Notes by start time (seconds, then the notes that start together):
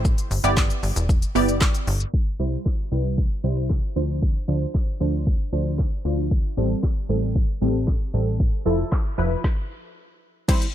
Already playing: A1
0.05 kick, shaker
0.18 closed hi-hat, shaker
0.31 G1, open hi-hat, shaker
0.44 G1 B3 E4 G4 D5, closed hi-hat, shaker
0.57 kick, snare, clap, shaker
0.70 closed hi-hat, shaker
0.83 G1, open hi-hat, shaker
0.96 E1, closed hi-hat, shaker
1.09 kick, shaker
1.22 closed hi-hat, shaker
1.35 G1 B3 E4 G4 D5, open hi-hat, shaker
1.49 closed hi-hat, shaker
1.61 kick, snare, clap, shaker
1.75 closed hi-hat, shaker
1.87 G1, open hi-hat, shaker
2.00 closed hi-hat, shaker
2.14 kick
2.39 C2 G3 E4 C5
2.66 kick, snare, clap
2.92 C2 G3 E4 B4
3.18 kick
3.44 C2 G3 E4 C5
3.69 kick, snare, clap
3.96 D2 F3 D4 C5
4.22 kick
4.36 closed hi-hat
4.48 D2 F3 D4 C5
4.74 kick, snare, clap
5.00 D2 F3 D4 C5
5.27 kick
5.40 closed hi-hat
5.52 D2 F3 D4 C5
5.78 kick, snare, clap
6.05 D2 F3 D4 F4
6.31 kick
6.44 closed hi-hat
6.57 A1 G3 C4 A4
6.83 kick, snare, clap
7.09 A1 G3 C4 A4
7.36 kick, closed hi-hat
7.49 closed hi-hat
7.62 A1 G3 C4 A4
7.75 closed hi-hat
7.87 kick, snare, clap
8.14 A1 G3 C4 A4
8.40 kick
8.53 closed hi-hat
8.65 F1 F3 E4 A4, open hi-hat
8.79 closed hi-hat
8.92 kick, snare, clap, closed hi-hat
9.05 closed hi-hat
9.18 F1 F3 E4 B4, open hi-hat
9.31 closed hi-hat
9.44 kick, snare
10.48 G3 C4 E4 C5, kick, crash, shaker
10.62 closed hi-hat, shaker